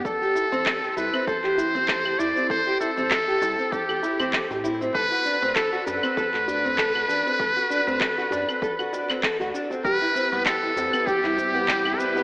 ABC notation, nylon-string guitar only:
X:1
M:4/4
L:1/16
Q:"Swing 16ths" 1/4=98
K:Dmix
V:1 name="Nylon-string guitar"
A G E C A G E C A G E C A G E C | A G E C A G E C A G E C A G E C | A F D C A F D C A F D C A F D C | A F D C A F D C A F D C A F D C |
G E C B, G E C B, G E C B, G E C B, |]